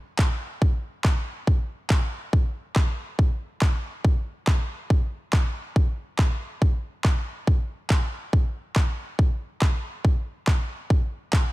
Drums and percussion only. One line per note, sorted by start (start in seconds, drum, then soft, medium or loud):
0.19 kick loud
0.19 clap loud
0.62 kick loud
1.05 kick loud
1.05 clap loud
1.47 kick loud
1.90 kick loud
1.90 clap loud
2.33 kick loud
2.76 kick loud
2.76 clap loud
3.19 kick loud
3.62 kick loud
3.62 clap loud
4.05 kick loud
4.47 kick loud
4.47 clap loud
4.90 kick loud
5.33 kick loud
5.33 clap loud
5.76 kick loud
6.19 kick loud
6.19 clap loud
6.62 kick loud
7.05 kick loud
7.05 clap loud
7.47 kick loud
7.90 kick loud
7.90 clap loud
8.33 kick loud
8.76 kick loud
8.76 clap loud
9.19 kick loud
9.62 kick loud
9.62 clap loud
10.05 kick loud
10.47 kick loud
10.47 clap loud
10.90 kick loud
11.33 kick loud
11.33 clap loud